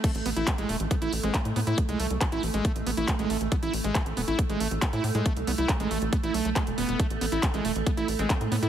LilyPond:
<<
  \new Staff \with { instrumentName = "Synth arpeggio sound" } { \time 4/4 \key a \minor \tempo 4 = 138 r2 r8. c'16 a4~ | a8 r2. r8 | r1 | r1 |
r2 r8. c'16 r4 | }
  \new Staff \with { instrumentName = "Acid bass" } { \time 4/4 \key a \minor a16 r16 b16 e'16 r16 gis16 a16 r16 b16 e'16 r16 gis16 a16 r16 b16 e'16 | r16 gis16 a16 r16 b16 e'16 r16 gis16 a16 r16 b16 e'16 r16 gis16 a16 r16 | b16 e'16 r16 gis16 a16 r16 b16 e'16 r16 gis16 a16 r16 b16 e'16 r16 gis16 | a16 r16 b16 e'16 r16 gis16 a16 r16 b16 e'16 a16 a16 gis16 r16 b16 b16 |
a16 r16 b16 e'16 r16 gis16 a16 r16 b16 e'16 r16 gis16 a16 r16 b16 e'16 | }
  \new Staff \with { instrumentName = "Ambient pad" } { \time 4/4 \key a \minor a1~ | a1~ | a1~ | a1~ |
a1 | }
  \new Staff \with { instrumentName = "Analog synth bass" } { \clef bass \time 4/4 \key a \minor r16 a,,16 a,,16 a,,16 r16 a,,16 e,,16 a,,16 r16 a,,16 a,,16 a,,16 r16 a,16 a,16 a,16 | r16 c,16 c,16 c,16 r16 a,,16 a,,16 a,,16 r16 a,,16 a,,16 a,,16 r16 a,,16 a,,16 a,,16 | r16 a,,16 a,,16 a,,16 r16 a,,16 e,,16 a,,16 r16 a,,16 a,,16 a,,16 r16 a,16 a,16 a,16 | r16 c,16 c,16 c,16 r16 a,,16 a,,16 a,,16 r16 a,,16 b,,16 b,,16 r16 e,,16 e,,16 e,,16 |
r16 a,,16 a,,16 a,,16 r16 a,,16 e,,16 a,,16 r16 a,,16 a,,16 a,,16 r16 a,16 a,16 a,16 | }
  \new DrumStaff \with { instrumentName = "Drums" } \drummode { \time 4/4 <cymc hh bd>16 hh16 hho16 hh16 <hc hh bd>16 hh16 hho16 hh16 <hh bd>16 hh16 hho16 hh16 <hc hh bd>16 hh16 hho16 hh16 | <hh bd>16 hh16 hho16 hh16 <hc hh bd>16 hh16 hho16 hh16 <hh bd>16 hh16 hho16 hh16 <hc hh bd>16 hh16 hho16 hh16 | <hh bd>16 hh16 hho16 hh16 <hc hh bd>16 hh16 hho16 hh16 <hh bd>16 hh16 hho16 hh16 <hc hh bd>16 hh16 hho16 hh16 | <hh bd>16 hh16 hho16 hh16 <hc hh bd>16 hh16 hho16 hh16 <hh bd>16 hh16 hho16 hh16 <hc hh bd>16 hh16 hho16 hh16 |
<hh bd>16 hh16 hho16 hh16 <hc hh bd>16 hh16 hho16 hh16 <hh bd>16 hh16 hho16 hh16 <hc hh bd>16 hh16 hho16 hh16 | }
>>